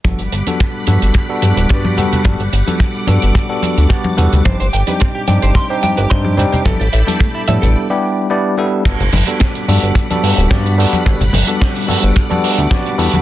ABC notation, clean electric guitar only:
X:1
M:4/4
L:1/16
Q:"Swing 16ths" 1/4=109
K:G
V:1 name="Clean electric guitar"
z16 | z16 | c c g B C G g c c' c g B c' G c c | A A e G A, E e A z8 |
z16 | z16 |]